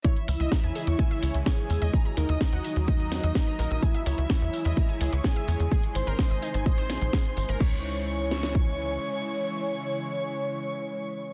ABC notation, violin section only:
X:1
M:4/4
L:1/8
Q:1/4=127
K:C#dor
V:1 name="Violin section"
e6 g2- | g d3 d4 | e6 g2- | g ^b3 b4 |
c'8- | c'8 |]